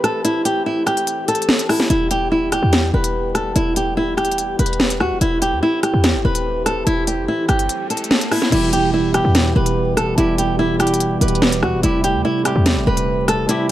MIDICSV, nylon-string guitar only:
0, 0, Header, 1, 2, 480
1, 0, Start_track
1, 0, Key_signature, 1, "minor"
1, 0, Tempo, 413793
1, 285, Time_signature, 4, 2, 24, 8
1, 15907, End_track
2, 0, Start_track
2, 0, Title_t, "Nylon-string guitar"
2, 0, Program_c, 0, 24
2, 45, Note_on_c, 0, 69, 88
2, 241, Note_off_c, 0, 69, 0
2, 285, Note_on_c, 0, 64, 95
2, 481, Note_off_c, 0, 64, 0
2, 525, Note_on_c, 0, 67, 80
2, 720, Note_off_c, 0, 67, 0
2, 767, Note_on_c, 0, 64, 84
2, 962, Note_off_c, 0, 64, 0
2, 1001, Note_on_c, 0, 67, 80
2, 1455, Note_off_c, 0, 67, 0
2, 1488, Note_on_c, 0, 69, 79
2, 1938, Note_off_c, 0, 69, 0
2, 1967, Note_on_c, 0, 64, 78
2, 2162, Note_off_c, 0, 64, 0
2, 2205, Note_on_c, 0, 64, 99
2, 2401, Note_off_c, 0, 64, 0
2, 2446, Note_on_c, 0, 67, 77
2, 2641, Note_off_c, 0, 67, 0
2, 2686, Note_on_c, 0, 64, 83
2, 2881, Note_off_c, 0, 64, 0
2, 2927, Note_on_c, 0, 67, 78
2, 3378, Note_off_c, 0, 67, 0
2, 3408, Note_on_c, 0, 71, 86
2, 3859, Note_off_c, 0, 71, 0
2, 3884, Note_on_c, 0, 69, 85
2, 4080, Note_off_c, 0, 69, 0
2, 4126, Note_on_c, 0, 64, 99
2, 4321, Note_off_c, 0, 64, 0
2, 4368, Note_on_c, 0, 67, 85
2, 4563, Note_off_c, 0, 67, 0
2, 4605, Note_on_c, 0, 64, 91
2, 4801, Note_off_c, 0, 64, 0
2, 4839, Note_on_c, 0, 67, 75
2, 5294, Note_off_c, 0, 67, 0
2, 5325, Note_on_c, 0, 71, 83
2, 5777, Note_off_c, 0, 71, 0
2, 5808, Note_on_c, 0, 66, 80
2, 6002, Note_off_c, 0, 66, 0
2, 6047, Note_on_c, 0, 64, 96
2, 6242, Note_off_c, 0, 64, 0
2, 6286, Note_on_c, 0, 67, 78
2, 6481, Note_off_c, 0, 67, 0
2, 6526, Note_on_c, 0, 64, 93
2, 6721, Note_off_c, 0, 64, 0
2, 6765, Note_on_c, 0, 67, 79
2, 7217, Note_off_c, 0, 67, 0
2, 7247, Note_on_c, 0, 71, 89
2, 7698, Note_off_c, 0, 71, 0
2, 7725, Note_on_c, 0, 69, 89
2, 7921, Note_off_c, 0, 69, 0
2, 7966, Note_on_c, 0, 64, 95
2, 8161, Note_off_c, 0, 64, 0
2, 8205, Note_on_c, 0, 67, 85
2, 8401, Note_off_c, 0, 67, 0
2, 8448, Note_on_c, 0, 64, 84
2, 8642, Note_off_c, 0, 64, 0
2, 8681, Note_on_c, 0, 67, 78
2, 9135, Note_off_c, 0, 67, 0
2, 9167, Note_on_c, 0, 69, 79
2, 9618, Note_off_c, 0, 69, 0
2, 9647, Note_on_c, 0, 64, 80
2, 9842, Note_off_c, 0, 64, 0
2, 9885, Note_on_c, 0, 64, 102
2, 10080, Note_off_c, 0, 64, 0
2, 10125, Note_on_c, 0, 67, 81
2, 10321, Note_off_c, 0, 67, 0
2, 10365, Note_on_c, 0, 64, 80
2, 10561, Note_off_c, 0, 64, 0
2, 10607, Note_on_c, 0, 67, 78
2, 11058, Note_off_c, 0, 67, 0
2, 11086, Note_on_c, 0, 71, 86
2, 11537, Note_off_c, 0, 71, 0
2, 11563, Note_on_c, 0, 69, 88
2, 11759, Note_off_c, 0, 69, 0
2, 11805, Note_on_c, 0, 64, 100
2, 12001, Note_off_c, 0, 64, 0
2, 12048, Note_on_c, 0, 67, 86
2, 12242, Note_off_c, 0, 67, 0
2, 12284, Note_on_c, 0, 64, 93
2, 12480, Note_off_c, 0, 64, 0
2, 12521, Note_on_c, 0, 67, 75
2, 12974, Note_off_c, 0, 67, 0
2, 13005, Note_on_c, 0, 71, 83
2, 13456, Note_off_c, 0, 71, 0
2, 13490, Note_on_c, 0, 66, 80
2, 13683, Note_off_c, 0, 66, 0
2, 13727, Note_on_c, 0, 64, 100
2, 13922, Note_off_c, 0, 64, 0
2, 13967, Note_on_c, 0, 67, 81
2, 14162, Note_off_c, 0, 67, 0
2, 14207, Note_on_c, 0, 64, 97
2, 14402, Note_off_c, 0, 64, 0
2, 14448, Note_on_c, 0, 67, 80
2, 14898, Note_off_c, 0, 67, 0
2, 14929, Note_on_c, 0, 71, 92
2, 15379, Note_off_c, 0, 71, 0
2, 15409, Note_on_c, 0, 69, 92
2, 15603, Note_off_c, 0, 69, 0
2, 15648, Note_on_c, 0, 64, 97
2, 15842, Note_off_c, 0, 64, 0
2, 15907, End_track
0, 0, End_of_file